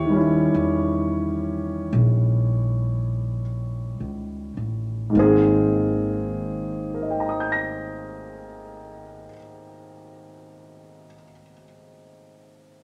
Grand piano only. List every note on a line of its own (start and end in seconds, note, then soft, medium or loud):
0.00 0.15 E4 medium
0.00 3.42 G4 medium
0.00 3.41 C#5 medium
0.05 5.11 D#3 soft
0.05 5.14 G3 soft
0.12 5.16 C#4 soft
0.16 5.18 E4 soft
5.10 9.25 G#2 soft
5.10 9.28 D#3 soft
5.16 9.32 A#3 soft
5.16 9.35 C4 soft
5.16 5.21 G#4 medium
5.23 9.38 G#4 medium
6.94 11.06 A#4 soft
7.03 11.14 D#5 soft
7.10 11.22 G5 soft
7.20 11.32 A#5 soft
7.29 11.41 D#6 soft
7.40 11.52 G6 soft
7.52 11.64 A#6 soft